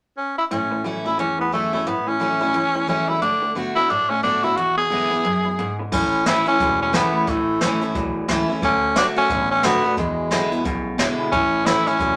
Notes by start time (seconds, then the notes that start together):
0.17 C#4
0.38 E4
0.51 A2 E3 C#4
0.71 A2 E3
0.84 A2 E3 F#3 A3 C#4 E4
1.05 A2 F#3 C#4 E4
1.18 E2 A2 E3 C#4
1.39 A2 E3 B3
1.52 A2 E3 F#3 A3 C#4 E4
1.73 A2 F#3 A3 C#4 E4
1.87 A2 E3 B3
2.07 A2 E3 C#4
2.20 A2 E3 F#3 A3 C#4 E4
2.41 A2 F#3 C#4 E4
2.54 E2 A2 E3
2.75 A2 E3
2.87 A2 E3 F#3 A3 C#4 E4
3.08 A2 F#3 E4
3.22 D3 A3 D4
3.42 D3 A3
3.55 D3 A3 B3 D4 F#4
3.76 D3 B3 D4 E4 F#4
3.90 A2 D3 A3 D4
4.10 D3 A3 C#4
4.23 D3 A3 B3 D4 F#4
4.43 D3 B3 D4 E4 F#4
4.57 E2 B2 F#4
4.77 E2 B2 G#4
4.90 E2 C#3 D3 G#3 B3 E4
5.11 E2 C#3 B3 E4
5.24 E2 F#2 B2
5.45 E2 B2
5.59 E2 G#2 C#3
5.79 E2 C#3
5.92 A1 A2 E3 C#4, kick, crash
6.26 A2 E3 A3 C#4 E4, snare, closed hi-hat
6.46 A2 E3 C#4 E4, muted upright bass stroke, closed hi-hat
6.60 E1 E2 A2 F#3, kick, closed hi-hat
6.82 C#4
6.93 A2 E3 A3 B3 C#4 E4, snare, closed hi-hat
7.14 A2 E3, muted upright bass stroke
7.27 A1 A2 E3 A3, kick, closed hi-hat
7.61 A2 E3 A3 C#4 E4, snare, closed hi-hat
7.81 A2 E3 C#4 E4, muted upright bass stroke, closed hi-hat
7.95 B1 E2 A2 F#3, kick, closed hi-hat
8.16 muted upright bass stroke
8.28 C#2 A2 E3 A3 C#4 E4, snare, closed hi-hat
8.49 A2 E3 C#4 E4, muted upright bass stroke
8.62 D2 D3 A3 C#4, kick, closed hi-hat
8.96 D3 A3 D4 F#4, snare, closed hi-hat
9.16 D3 A3 C#4 D4 F#4, muted upright bass stroke, closed hi-hat
9.29 A1 A2 D3 B3, kick, closed hi-hat
9.51 C#4
9.63 D3 A3 B3 D4 F#4, snare, closed hi-hat
9.84 D3 A3 D4 F#4
9.97 E2 B2 G#3, kick, closed hi-hat
10.31 E2 B2 D3 G#3 B3 E4, snare, closed hi-hat
10.52 E2 B2 B3 E4, muted upright bass stroke, closed hi-hat
10.65 B1 E2 B2 C#3, kick, closed hi-hat
10.98 E2 B2 D3 G#3 B3 E4, snare, closed hi-hat
11.19 E2 B2, muted upright bass stroke
11.32 A1 A2 E3 C#4, kick, closed hi-hat
11.65 A2 E3 A3 C#4 E4, snare, closed hi-hat
11.86 A2 E3 C#4 E4, closed hi-hat
11.99 E1 E2 A2 F#3, kick, closed hi-hat